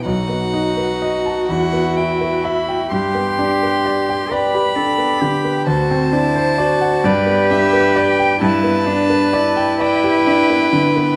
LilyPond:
<<
  \new Staff \with { instrumentName = "Violin" } { \time 6/8 \key g \major \tempo 4. = 43 fis''4. fis''8 g''8 b''8 | c'''4. b''4. | a''4. d''8 e''8 g''8 | a''4. g''4. | }
  \new Staff \with { instrumentName = "Violin" } { \time 6/8 \key g \major dis'4. e'4. | g'4. g'4. | c''4. b'4. | b'4. b'4. | }
  \new Staff \with { instrumentName = "Cello" } { \time 6/8 \key g \major fis'2. | g'4. b'8 a'8 g'8 | fis'8 e'8 fis'8 g'4. | e'8 d'8 e'2 | }
  \new Staff \with { instrumentName = "Grand piano" } { \time 6/8 \key g \major b,,16 b16 dis'16 b'16 dis''16 a''16 e,16 b16 e'16 b'16 e''16 g''16 | g,16 b16 d'16 b'16 d''16 g''16 d''16 g'16 d'16 b16 d16 b16 | d,16 c'16 d'16 c''16 d''16 fis''16 g,16 b16 d'16 b'16 d''16 g''16 | g,16 b16 d'16 b'16 d''16 g''16 d''16 g'16 d'16 b16 d16 b16 | }
>>